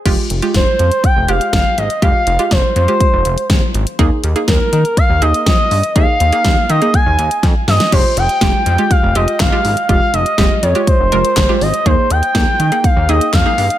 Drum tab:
CC |x---------------|----------------|----------------|----------------|
HH |x-xxx-xxx-xxx-xx|x-xxx-xxx-xxx-xx|x-xxx-xxx-xxx-ox|x-xxx-xxx-xxx-ox|
CP |----------------|----------------|----------------|----------------|
SD |----o-------o---|----o-------o---|----o-------o---|----o-------o-oo|
BD |o---o---o---o---|o---o---o---o---|o---o---o---o---|o---o---o---o---|

CC |x---------------|----------------|----------------|
HH |x-xxx-xxx-xxx-ox|x-xxx-xxx-xxx-ox|x-xxx-xxx-xxx-ox|
CP |------------x---|------------x---|------------x---|
SD |----o-------o---|----o-------o---|----o-------o---|
BD |o---o---o---o---|o---o---o---o---|o---o---o---o---|